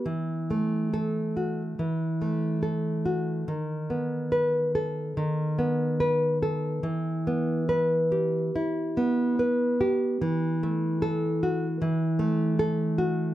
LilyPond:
\new Staff \with { instrumentName = "Nylon-string guitar" } { \time 4/4 \key e \minor \tempo 4 = 72 << { r4 a'4 r2 | r4 b'4 r2 | r4 b'4 r2 | r4 a'4 r2 | } \\ { e8 a4 fis'8 e8 a8 a'8 fis'8 | dis8 b4 a'8 dis8 b8 b'8 a'8 | e8 b4 g'8 e'8 b8 b'8 g'8 | e8 a4 fis'8 e8 a8 a'8 fis'8 | } >> }